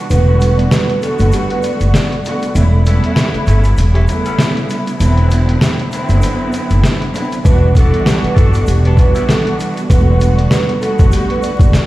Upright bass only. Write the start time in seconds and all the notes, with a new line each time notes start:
0.10 E1
1.20 F#1
1.81 F#1
2.55 E1
3.34 muted upright bass stroke
3.47 G1
3.78 E1
5.00 E1
6.09 F#1
6.71 F#1
7.45 E1
8.24 muted upright bass stroke
8.37 G1
8.68 E1
9.90 E1
10.99 F#1
11.60 F#1